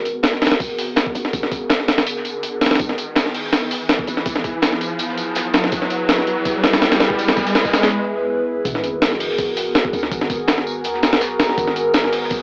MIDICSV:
0, 0, Header, 1, 6, 480
1, 0, Start_track
1, 0, Key_signature, 5, "minor"
1, 0, Tempo, 365854
1, 1750, Time_signature, 4, 2, 24, 8
1, 16296, End_track
2, 0, Start_track
2, 0, Title_t, "Ambient pad"
2, 0, Program_c, 0, 92
2, 0, Note_on_c, 0, 59, 75
2, 0, Note_on_c, 0, 66, 72
2, 0, Note_on_c, 0, 68, 70
2, 0, Note_on_c, 0, 70, 85
2, 3618, Note_off_c, 0, 66, 0
2, 3618, Note_off_c, 0, 70, 0
2, 3673, Note_on_c, 0, 64, 74
2, 3674, Note_on_c, 0, 71, 86
2, 11297, Note_off_c, 0, 59, 0
2, 11297, Note_off_c, 0, 68, 0
2, 11300, Note_off_c, 0, 64, 0
2, 11300, Note_off_c, 0, 71, 0
2, 11350, Note_on_c, 0, 68, 72
2, 11350, Note_on_c, 0, 70, 90
2, 11351, Note_on_c, 0, 66, 73
2, 11352, Note_on_c, 0, 59, 78
2, 16296, Note_off_c, 0, 59, 0
2, 16296, Note_off_c, 0, 66, 0
2, 16296, Note_off_c, 0, 68, 0
2, 16296, Note_off_c, 0, 70, 0
2, 16296, End_track
3, 0, Start_track
3, 0, Title_t, "808-style bass"
3, 0, Program_c, 1, 38
3, 0, Note_on_c, 1, 32, 97
3, 790, Note_on_c, 1, 34, 99
3, 810, Note_off_c, 1, 32, 0
3, 1252, Note_off_c, 1, 34, 0
3, 1510, Note_on_c, 1, 37, 91
3, 1728, Note_off_c, 1, 37, 0
3, 1749, Note_on_c, 1, 32, 98
3, 2710, Note_on_c, 1, 39, 82
3, 2730, Note_off_c, 1, 32, 0
3, 3652, Note_off_c, 1, 39, 0
3, 3668, Note_on_c, 1, 32, 96
3, 4628, Note_on_c, 1, 34, 96
3, 4648, Note_off_c, 1, 32, 0
3, 5091, Note_off_c, 1, 34, 0
3, 5349, Note_on_c, 1, 37, 92
3, 5568, Note_off_c, 1, 37, 0
3, 5588, Note_on_c, 1, 32, 98
3, 6551, Note_on_c, 1, 39, 86
3, 6570, Note_off_c, 1, 32, 0
3, 7493, Note_off_c, 1, 39, 0
3, 7509, Note_on_c, 1, 32, 99
3, 8469, Note_on_c, 1, 34, 96
3, 8488, Note_off_c, 1, 32, 0
3, 8932, Note_off_c, 1, 34, 0
3, 9187, Note_on_c, 1, 37, 93
3, 9407, Note_off_c, 1, 37, 0
3, 9429, Note_on_c, 1, 32, 100
3, 10390, Note_off_c, 1, 32, 0
3, 11349, Note_on_c, 1, 32, 98
3, 12312, Note_on_c, 1, 34, 97
3, 12332, Note_off_c, 1, 32, 0
3, 12773, Note_off_c, 1, 34, 0
3, 13030, Note_on_c, 1, 37, 94
3, 13248, Note_off_c, 1, 37, 0
3, 13271, Note_on_c, 1, 32, 98
3, 14231, Note_on_c, 1, 39, 85
3, 14251, Note_off_c, 1, 32, 0
3, 14711, Note_on_c, 1, 35, 101
3, 14731, Note_off_c, 1, 39, 0
3, 14928, Note_off_c, 1, 35, 0
3, 14949, Note_on_c, 1, 27, 79
3, 15167, Note_off_c, 1, 27, 0
3, 15190, Note_on_c, 1, 32, 99
3, 16150, Note_on_c, 1, 34, 101
3, 16170, Note_off_c, 1, 32, 0
3, 16296, Note_off_c, 1, 34, 0
3, 16296, End_track
4, 0, Start_track
4, 0, Title_t, "Riser"
4, 0, Program_c, 2, 103
4, 0, Note_on_c, 2, 60, 79
4, 10390, Note_off_c, 2, 60, 0
4, 16296, End_track
5, 0, Start_track
5, 0, Title_t, "Sub drop"
5, 0, Program_c, 3, 103
5, 11353, Note_on_c, 3, 60, 74
5, 13272, Note_off_c, 3, 60, 0
5, 16296, End_track
6, 0, Start_track
6, 0, Title_t, "Drums"
6, 69, Note_on_c, 9, 46, 68
6, 72, Note_on_c, 9, 54, 71
6, 200, Note_off_c, 9, 46, 0
6, 204, Note_off_c, 9, 54, 0
6, 301, Note_on_c, 9, 38, 114
6, 306, Note_on_c, 9, 54, 79
6, 309, Note_off_c, 9, 38, 0
6, 309, Note_on_c, 9, 38, 120
6, 309, Note_on_c, 9, 46, 89
6, 437, Note_off_c, 9, 38, 0
6, 437, Note_off_c, 9, 54, 0
6, 437, Note_on_c, 9, 38, 37
6, 440, Note_off_c, 9, 46, 0
6, 546, Note_on_c, 9, 46, 70
6, 548, Note_off_c, 9, 38, 0
6, 548, Note_off_c, 9, 46, 0
6, 548, Note_on_c, 9, 38, 84
6, 548, Note_on_c, 9, 46, 67
6, 613, Note_off_c, 9, 38, 0
6, 613, Note_off_c, 9, 46, 0
6, 613, Note_on_c, 9, 38, 86
6, 613, Note_on_c, 9, 46, 67
6, 676, Note_off_c, 9, 38, 0
6, 676, Note_off_c, 9, 46, 0
6, 676, Note_on_c, 9, 38, 101
6, 676, Note_on_c, 9, 46, 77
6, 682, Note_off_c, 9, 38, 0
6, 682, Note_on_c, 9, 38, 39
6, 788, Note_off_c, 9, 46, 0
6, 788, Note_on_c, 9, 46, 85
6, 789, Note_on_c, 9, 36, 106
6, 793, Note_on_c, 9, 54, 92
6, 813, Note_off_c, 9, 38, 0
6, 919, Note_off_c, 9, 46, 0
6, 920, Note_off_c, 9, 36, 0
6, 924, Note_off_c, 9, 54, 0
6, 1030, Note_on_c, 9, 46, 80
6, 1034, Note_on_c, 9, 54, 66
6, 1161, Note_off_c, 9, 46, 0
6, 1165, Note_off_c, 9, 54, 0
6, 1263, Note_on_c, 9, 38, 126
6, 1265, Note_on_c, 9, 54, 85
6, 1271, Note_off_c, 9, 38, 0
6, 1271, Note_on_c, 9, 38, 118
6, 1271, Note_on_c, 9, 46, 91
6, 1396, Note_off_c, 9, 54, 0
6, 1398, Note_on_c, 9, 36, 100
6, 1402, Note_off_c, 9, 38, 0
6, 1402, Note_off_c, 9, 46, 0
6, 1508, Note_on_c, 9, 54, 70
6, 1512, Note_on_c, 9, 46, 69
6, 1529, Note_off_c, 9, 36, 0
6, 1639, Note_off_c, 9, 54, 0
6, 1639, Note_on_c, 9, 38, 48
6, 1643, Note_off_c, 9, 46, 0
6, 1750, Note_on_c, 9, 36, 105
6, 1751, Note_on_c, 9, 46, 87
6, 1754, Note_on_c, 9, 54, 85
6, 1770, Note_off_c, 9, 38, 0
6, 1880, Note_on_c, 9, 38, 54
6, 1881, Note_off_c, 9, 36, 0
6, 1882, Note_off_c, 9, 46, 0
6, 1885, Note_off_c, 9, 54, 0
6, 1988, Note_on_c, 9, 54, 67
6, 1990, Note_on_c, 9, 36, 93
6, 1991, Note_on_c, 9, 46, 68
6, 2011, Note_off_c, 9, 38, 0
6, 2119, Note_off_c, 9, 54, 0
6, 2121, Note_off_c, 9, 36, 0
6, 2122, Note_off_c, 9, 46, 0
6, 2226, Note_on_c, 9, 38, 124
6, 2231, Note_on_c, 9, 54, 81
6, 2232, Note_off_c, 9, 38, 0
6, 2232, Note_on_c, 9, 38, 119
6, 2232, Note_on_c, 9, 46, 86
6, 2360, Note_off_c, 9, 38, 0
6, 2360, Note_on_c, 9, 38, 45
6, 2363, Note_off_c, 9, 46, 0
6, 2363, Note_off_c, 9, 54, 0
6, 2467, Note_on_c, 9, 54, 62
6, 2472, Note_off_c, 9, 38, 0
6, 2472, Note_on_c, 9, 38, 102
6, 2472, Note_on_c, 9, 46, 77
6, 2598, Note_off_c, 9, 38, 0
6, 2598, Note_off_c, 9, 46, 0
6, 2598, Note_off_c, 9, 54, 0
6, 2598, Note_on_c, 9, 38, 101
6, 2598, Note_on_c, 9, 46, 78
6, 2711, Note_off_c, 9, 46, 0
6, 2711, Note_on_c, 9, 46, 86
6, 2711, Note_on_c, 9, 54, 90
6, 2729, Note_off_c, 9, 38, 0
6, 2842, Note_off_c, 9, 46, 0
6, 2842, Note_off_c, 9, 54, 0
6, 2843, Note_on_c, 9, 38, 47
6, 2950, Note_on_c, 9, 46, 70
6, 2951, Note_on_c, 9, 54, 68
6, 2974, Note_off_c, 9, 38, 0
6, 3081, Note_off_c, 9, 46, 0
6, 3082, Note_off_c, 9, 54, 0
6, 3189, Note_on_c, 9, 46, 90
6, 3190, Note_on_c, 9, 54, 86
6, 3320, Note_off_c, 9, 46, 0
6, 3321, Note_off_c, 9, 54, 0
6, 3425, Note_on_c, 9, 54, 54
6, 3429, Note_on_c, 9, 38, 86
6, 3429, Note_on_c, 9, 46, 66
6, 3492, Note_off_c, 9, 38, 0
6, 3492, Note_off_c, 9, 46, 0
6, 3492, Note_on_c, 9, 38, 88
6, 3492, Note_on_c, 9, 46, 70
6, 3557, Note_off_c, 9, 38, 0
6, 3557, Note_off_c, 9, 46, 0
6, 3557, Note_off_c, 9, 54, 0
6, 3557, Note_on_c, 9, 38, 85
6, 3557, Note_on_c, 9, 46, 66
6, 3612, Note_off_c, 9, 38, 0
6, 3612, Note_off_c, 9, 46, 0
6, 3612, Note_on_c, 9, 38, 88
6, 3612, Note_on_c, 9, 46, 65
6, 3665, Note_on_c, 9, 54, 81
6, 3668, Note_off_c, 9, 46, 0
6, 3668, Note_on_c, 9, 46, 87
6, 3669, Note_on_c, 9, 36, 105
6, 3743, Note_off_c, 9, 38, 0
6, 3796, Note_off_c, 9, 54, 0
6, 3796, Note_on_c, 9, 38, 44
6, 3799, Note_off_c, 9, 46, 0
6, 3800, Note_off_c, 9, 36, 0
6, 3910, Note_on_c, 9, 46, 67
6, 3916, Note_on_c, 9, 54, 71
6, 3927, Note_off_c, 9, 38, 0
6, 4041, Note_off_c, 9, 46, 0
6, 4047, Note_off_c, 9, 54, 0
6, 4141, Note_on_c, 9, 38, 112
6, 4146, Note_on_c, 9, 54, 79
6, 4149, Note_off_c, 9, 38, 0
6, 4149, Note_on_c, 9, 38, 115
6, 4149, Note_on_c, 9, 46, 91
6, 4277, Note_off_c, 9, 38, 0
6, 4277, Note_off_c, 9, 54, 0
6, 4277, Note_on_c, 9, 38, 37
6, 4280, Note_off_c, 9, 46, 0
6, 4388, Note_on_c, 9, 46, 59
6, 4394, Note_off_c, 9, 46, 0
6, 4394, Note_on_c, 9, 46, 81
6, 4408, Note_off_c, 9, 38, 0
6, 4521, Note_on_c, 9, 38, 38
6, 4525, Note_off_c, 9, 46, 0
6, 4627, Note_off_c, 9, 38, 0
6, 4627, Note_on_c, 9, 38, 100
6, 4627, Note_on_c, 9, 46, 77
6, 4632, Note_on_c, 9, 54, 91
6, 4759, Note_off_c, 9, 38, 0
6, 4759, Note_off_c, 9, 46, 0
6, 4763, Note_off_c, 9, 54, 0
6, 4868, Note_on_c, 9, 46, 82
6, 4870, Note_on_c, 9, 54, 62
6, 4999, Note_off_c, 9, 46, 0
6, 5001, Note_off_c, 9, 54, 0
6, 5106, Note_on_c, 9, 54, 87
6, 5107, Note_on_c, 9, 38, 117
6, 5107, Note_on_c, 9, 46, 92
6, 5124, Note_off_c, 9, 38, 0
6, 5124, Note_on_c, 9, 38, 125
6, 5236, Note_on_c, 9, 36, 99
6, 5237, Note_off_c, 9, 54, 0
6, 5238, Note_off_c, 9, 46, 0
6, 5255, Note_off_c, 9, 38, 0
6, 5347, Note_on_c, 9, 46, 70
6, 5355, Note_on_c, 9, 54, 67
6, 5367, Note_off_c, 9, 36, 0
6, 5474, Note_on_c, 9, 38, 51
6, 5478, Note_off_c, 9, 46, 0
6, 5486, Note_off_c, 9, 54, 0
6, 5586, Note_on_c, 9, 46, 88
6, 5588, Note_on_c, 9, 36, 111
6, 5601, Note_on_c, 9, 54, 84
6, 5605, Note_off_c, 9, 38, 0
6, 5715, Note_on_c, 9, 38, 56
6, 5717, Note_off_c, 9, 46, 0
6, 5719, Note_off_c, 9, 36, 0
6, 5733, Note_off_c, 9, 54, 0
6, 5829, Note_on_c, 9, 36, 93
6, 5829, Note_on_c, 9, 46, 69
6, 5834, Note_on_c, 9, 54, 73
6, 5846, Note_off_c, 9, 38, 0
6, 5960, Note_off_c, 9, 36, 0
6, 5960, Note_off_c, 9, 46, 0
6, 5965, Note_off_c, 9, 54, 0
6, 6064, Note_on_c, 9, 38, 109
6, 6069, Note_off_c, 9, 38, 0
6, 6069, Note_on_c, 9, 38, 118
6, 6069, Note_on_c, 9, 46, 91
6, 6078, Note_on_c, 9, 54, 93
6, 6199, Note_off_c, 9, 38, 0
6, 6199, Note_on_c, 9, 38, 46
6, 6200, Note_off_c, 9, 46, 0
6, 6209, Note_off_c, 9, 54, 0
6, 6311, Note_on_c, 9, 46, 66
6, 6313, Note_on_c, 9, 54, 63
6, 6330, Note_off_c, 9, 38, 0
6, 6442, Note_off_c, 9, 46, 0
6, 6444, Note_off_c, 9, 54, 0
6, 6545, Note_on_c, 9, 54, 99
6, 6550, Note_on_c, 9, 46, 82
6, 6676, Note_off_c, 9, 54, 0
6, 6679, Note_on_c, 9, 38, 42
6, 6681, Note_off_c, 9, 46, 0
6, 6790, Note_on_c, 9, 46, 67
6, 6791, Note_on_c, 9, 54, 65
6, 6810, Note_off_c, 9, 38, 0
6, 6922, Note_off_c, 9, 46, 0
6, 6922, Note_off_c, 9, 54, 0
6, 7021, Note_on_c, 9, 54, 82
6, 7031, Note_on_c, 9, 46, 93
6, 7038, Note_on_c, 9, 38, 127
6, 7152, Note_off_c, 9, 54, 0
6, 7162, Note_off_c, 9, 46, 0
6, 7170, Note_off_c, 9, 38, 0
6, 7264, Note_on_c, 9, 54, 65
6, 7270, Note_on_c, 9, 38, 119
6, 7270, Note_on_c, 9, 46, 71
6, 7395, Note_off_c, 9, 54, 0
6, 7399, Note_off_c, 9, 38, 0
6, 7399, Note_on_c, 9, 38, 60
6, 7401, Note_off_c, 9, 46, 0
6, 7503, Note_on_c, 9, 54, 79
6, 7509, Note_on_c, 9, 36, 114
6, 7510, Note_on_c, 9, 46, 90
6, 7530, Note_off_c, 9, 38, 0
6, 7634, Note_off_c, 9, 54, 0
6, 7637, Note_on_c, 9, 38, 45
6, 7641, Note_off_c, 9, 36, 0
6, 7642, Note_off_c, 9, 46, 0
6, 7742, Note_on_c, 9, 54, 67
6, 7749, Note_on_c, 9, 46, 71
6, 7768, Note_off_c, 9, 38, 0
6, 7873, Note_off_c, 9, 54, 0
6, 7880, Note_off_c, 9, 46, 0
6, 7989, Note_on_c, 9, 38, 121
6, 7989, Note_on_c, 9, 46, 92
6, 7992, Note_on_c, 9, 54, 90
6, 7993, Note_off_c, 9, 38, 0
6, 7993, Note_on_c, 9, 38, 125
6, 8116, Note_off_c, 9, 38, 0
6, 8116, Note_on_c, 9, 38, 37
6, 8120, Note_off_c, 9, 46, 0
6, 8124, Note_off_c, 9, 54, 0
6, 8228, Note_on_c, 9, 46, 68
6, 8247, Note_off_c, 9, 38, 0
6, 8359, Note_off_c, 9, 46, 0
6, 8467, Note_on_c, 9, 46, 89
6, 8467, Note_on_c, 9, 54, 98
6, 8468, Note_on_c, 9, 36, 109
6, 8598, Note_off_c, 9, 46, 0
6, 8599, Note_off_c, 9, 36, 0
6, 8599, Note_off_c, 9, 54, 0
6, 8707, Note_on_c, 9, 38, 110
6, 8707, Note_on_c, 9, 46, 83
6, 8709, Note_on_c, 9, 54, 71
6, 8835, Note_off_c, 9, 38, 0
6, 8835, Note_off_c, 9, 46, 0
6, 8835, Note_on_c, 9, 38, 106
6, 8835, Note_on_c, 9, 46, 82
6, 8841, Note_off_c, 9, 54, 0
6, 8942, Note_on_c, 9, 54, 82
6, 8947, Note_off_c, 9, 38, 0
6, 8947, Note_off_c, 9, 46, 0
6, 8947, Note_on_c, 9, 38, 106
6, 8947, Note_on_c, 9, 46, 82
6, 8951, Note_off_c, 9, 38, 0
6, 8951, Note_on_c, 9, 38, 109
6, 9073, Note_off_c, 9, 54, 0
6, 9076, Note_off_c, 9, 38, 0
6, 9076, Note_off_c, 9, 46, 0
6, 9076, Note_on_c, 9, 38, 114
6, 9076, Note_on_c, 9, 46, 82
6, 9181, Note_on_c, 9, 54, 61
6, 9189, Note_off_c, 9, 38, 0
6, 9189, Note_off_c, 9, 46, 0
6, 9189, Note_on_c, 9, 38, 105
6, 9189, Note_on_c, 9, 46, 79
6, 9312, Note_off_c, 9, 54, 0
6, 9317, Note_on_c, 9, 36, 84
6, 9321, Note_off_c, 9, 38, 0
6, 9321, Note_off_c, 9, 46, 0
6, 9430, Note_on_c, 9, 46, 61
6, 9431, Note_on_c, 9, 54, 83
6, 9448, Note_off_c, 9, 36, 0
6, 9557, Note_off_c, 9, 46, 0
6, 9557, Note_on_c, 9, 38, 111
6, 9557, Note_on_c, 9, 46, 79
6, 9562, Note_off_c, 9, 54, 0
6, 9664, Note_on_c, 9, 54, 79
6, 9669, Note_on_c, 9, 36, 89
6, 9670, Note_off_c, 9, 38, 0
6, 9670, Note_on_c, 9, 38, 115
6, 9688, Note_off_c, 9, 46, 0
6, 9795, Note_off_c, 9, 54, 0
6, 9795, Note_on_c, 9, 54, 73
6, 9797, Note_on_c, 9, 46, 63
6, 9800, Note_off_c, 9, 36, 0
6, 9801, Note_off_c, 9, 38, 0
6, 9804, Note_on_c, 9, 38, 94
6, 9907, Note_off_c, 9, 54, 0
6, 9907, Note_on_c, 9, 54, 80
6, 9909, Note_off_c, 9, 38, 0
6, 9909, Note_off_c, 9, 46, 0
6, 9909, Note_on_c, 9, 38, 106
6, 9909, Note_on_c, 9, 46, 82
6, 9914, Note_off_c, 9, 38, 0
6, 9914, Note_on_c, 9, 38, 115
6, 10037, Note_off_c, 9, 38, 0
6, 10037, Note_on_c, 9, 36, 84
6, 10037, Note_on_c, 9, 38, 106
6, 10038, Note_off_c, 9, 54, 0
6, 10040, Note_off_c, 9, 46, 0
6, 10040, Note_on_c, 9, 54, 79
6, 10149, Note_off_c, 9, 38, 0
6, 10149, Note_on_c, 9, 38, 106
6, 10149, Note_on_c, 9, 46, 80
6, 10151, Note_off_c, 9, 54, 0
6, 10151, Note_on_c, 9, 54, 82
6, 10155, Note_off_c, 9, 38, 0
6, 10155, Note_on_c, 9, 38, 96
6, 10168, Note_off_c, 9, 36, 0
6, 10277, Note_off_c, 9, 38, 0
6, 10277, Note_off_c, 9, 46, 0
6, 10277, Note_off_c, 9, 54, 0
6, 10277, Note_on_c, 9, 38, 106
6, 10277, Note_on_c, 9, 46, 79
6, 10277, Note_on_c, 9, 54, 78
6, 10280, Note_off_c, 9, 38, 0
6, 10280, Note_on_c, 9, 38, 114
6, 10408, Note_off_c, 9, 46, 0
6, 10408, Note_off_c, 9, 54, 0
6, 10411, Note_off_c, 9, 38, 0
6, 11350, Note_on_c, 9, 36, 109
6, 11350, Note_on_c, 9, 46, 88
6, 11352, Note_on_c, 9, 54, 84
6, 11480, Note_on_c, 9, 38, 45
6, 11481, Note_off_c, 9, 46, 0
6, 11482, Note_off_c, 9, 36, 0
6, 11484, Note_off_c, 9, 54, 0
6, 11590, Note_on_c, 9, 54, 62
6, 11592, Note_on_c, 9, 46, 71
6, 11611, Note_off_c, 9, 38, 0
6, 11721, Note_off_c, 9, 54, 0
6, 11723, Note_off_c, 9, 46, 0
6, 11831, Note_on_c, 9, 38, 116
6, 11831, Note_on_c, 9, 46, 91
6, 11832, Note_on_c, 9, 54, 95
6, 11959, Note_off_c, 9, 38, 0
6, 11959, Note_on_c, 9, 38, 38
6, 11962, Note_off_c, 9, 46, 0
6, 11963, Note_off_c, 9, 54, 0
6, 12071, Note_on_c, 9, 46, 78
6, 12072, Note_off_c, 9, 46, 0
6, 12072, Note_on_c, 9, 46, 69
6, 12091, Note_off_c, 9, 38, 0
6, 12199, Note_on_c, 9, 38, 42
6, 12203, Note_off_c, 9, 46, 0
6, 12307, Note_on_c, 9, 54, 83
6, 12311, Note_on_c, 9, 36, 108
6, 12311, Note_on_c, 9, 46, 88
6, 12331, Note_off_c, 9, 38, 0
6, 12438, Note_off_c, 9, 54, 0
6, 12442, Note_off_c, 9, 36, 0
6, 12442, Note_off_c, 9, 46, 0
6, 12552, Note_on_c, 9, 46, 84
6, 12553, Note_on_c, 9, 54, 68
6, 12683, Note_off_c, 9, 46, 0
6, 12684, Note_off_c, 9, 54, 0
6, 12792, Note_on_c, 9, 38, 115
6, 12792, Note_on_c, 9, 46, 91
6, 12793, Note_on_c, 9, 54, 95
6, 12801, Note_off_c, 9, 38, 0
6, 12801, Note_on_c, 9, 38, 127
6, 12919, Note_on_c, 9, 36, 103
6, 12923, Note_off_c, 9, 46, 0
6, 12924, Note_off_c, 9, 54, 0
6, 12932, Note_off_c, 9, 38, 0
6, 13028, Note_on_c, 9, 54, 69
6, 13031, Note_on_c, 9, 46, 70
6, 13050, Note_off_c, 9, 36, 0
6, 13159, Note_off_c, 9, 54, 0
6, 13159, Note_on_c, 9, 38, 49
6, 13162, Note_off_c, 9, 46, 0
6, 13271, Note_on_c, 9, 36, 116
6, 13271, Note_on_c, 9, 46, 89
6, 13273, Note_on_c, 9, 54, 92
6, 13291, Note_off_c, 9, 38, 0
6, 13400, Note_on_c, 9, 38, 54
6, 13402, Note_off_c, 9, 36, 0
6, 13402, Note_off_c, 9, 46, 0
6, 13404, Note_off_c, 9, 54, 0
6, 13508, Note_on_c, 9, 54, 72
6, 13511, Note_on_c, 9, 36, 98
6, 13511, Note_on_c, 9, 46, 70
6, 13531, Note_off_c, 9, 38, 0
6, 13639, Note_off_c, 9, 54, 0
6, 13642, Note_off_c, 9, 36, 0
6, 13643, Note_off_c, 9, 46, 0
6, 13744, Note_on_c, 9, 38, 124
6, 13751, Note_off_c, 9, 38, 0
6, 13751, Note_on_c, 9, 38, 117
6, 13751, Note_on_c, 9, 46, 92
6, 13752, Note_on_c, 9, 54, 84
6, 13878, Note_off_c, 9, 38, 0
6, 13878, Note_on_c, 9, 38, 47
6, 13882, Note_off_c, 9, 46, 0
6, 13883, Note_off_c, 9, 54, 0
6, 13994, Note_on_c, 9, 54, 63
6, 14009, Note_off_c, 9, 38, 0
6, 14125, Note_off_c, 9, 54, 0
6, 14222, Note_on_c, 9, 54, 84
6, 14231, Note_on_c, 9, 46, 85
6, 14353, Note_off_c, 9, 54, 0
6, 14355, Note_on_c, 9, 38, 44
6, 14362, Note_off_c, 9, 46, 0
6, 14465, Note_on_c, 9, 54, 73
6, 14471, Note_off_c, 9, 38, 0
6, 14471, Note_on_c, 9, 38, 107
6, 14471, Note_on_c, 9, 46, 81
6, 14596, Note_off_c, 9, 54, 0
6, 14599, Note_off_c, 9, 38, 0
6, 14599, Note_off_c, 9, 46, 0
6, 14599, Note_on_c, 9, 38, 105
6, 14599, Note_on_c, 9, 46, 80
6, 14705, Note_on_c, 9, 54, 86
6, 14710, Note_off_c, 9, 46, 0
6, 14710, Note_on_c, 9, 46, 87
6, 14712, Note_off_c, 9, 38, 0
6, 14712, Note_on_c, 9, 38, 127
6, 14837, Note_off_c, 9, 54, 0
6, 14841, Note_off_c, 9, 46, 0
6, 14843, Note_off_c, 9, 38, 0
6, 14950, Note_on_c, 9, 38, 108
6, 14950, Note_on_c, 9, 46, 82
6, 14954, Note_on_c, 9, 54, 67
6, 15079, Note_off_c, 9, 38, 0
6, 15079, Note_on_c, 9, 38, 35
6, 15082, Note_off_c, 9, 46, 0
6, 15085, Note_off_c, 9, 54, 0
6, 15189, Note_on_c, 9, 54, 92
6, 15190, Note_on_c, 9, 36, 113
6, 15190, Note_on_c, 9, 46, 88
6, 15210, Note_off_c, 9, 38, 0
6, 15318, Note_on_c, 9, 38, 45
6, 15320, Note_off_c, 9, 54, 0
6, 15321, Note_off_c, 9, 36, 0
6, 15321, Note_off_c, 9, 46, 0
6, 15430, Note_on_c, 9, 46, 69
6, 15435, Note_on_c, 9, 54, 66
6, 15450, Note_off_c, 9, 38, 0
6, 15561, Note_off_c, 9, 46, 0
6, 15566, Note_off_c, 9, 54, 0
6, 15662, Note_on_c, 9, 54, 87
6, 15670, Note_on_c, 9, 38, 118
6, 15670, Note_on_c, 9, 46, 93
6, 15671, Note_off_c, 9, 38, 0
6, 15671, Note_on_c, 9, 38, 114
6, 15793, Note_off_c, 9, 54, 0
6, 15799, Note_off_c, 9, 38, 0
6, 15799, Note_on_c, 9, 38, 39
6, 15801, Note_off_c, 9, 46, 0
6, 15910, Note_on_c, 9, 46, 75
6, 15930, Note_off_c, 9, 38, 0
6, 16042, Note_off_c, 9, 46, 0
6, 16046, Note_on_c, 9, 38, 39
6, 16143, Note_on_c, 9, 54, 88
6, 16149, Note_on_c, 9, 36, 110
6, 16150, Note_on_c, 9, 46, 90
6, 16177, Note_off_c, 9, 38, 0
6, 16274, Note_off_c, 9, 54, 0
6, 16281, Note_off_c, 9, 36, 0
6, 16281, Note_off_c, 9, 46, 0
6, 16296, End_track
0, 0, End_of_file